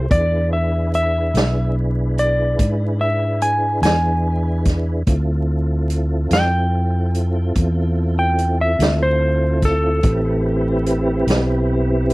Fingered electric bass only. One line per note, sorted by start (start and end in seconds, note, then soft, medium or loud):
0.10 1.31 E2 medium
1.34 2.55 B1 medium
2.59 3.79 G#2 medium
3.82 5.03 E2 medium
5.07 6.27 D2 medium
6.31 7.52 F2 medium
7.56 8.76 E2 medium
8.79 10.00 D2 medium
10.04 11.24 A1 medium
11.27 12.14 B1 medium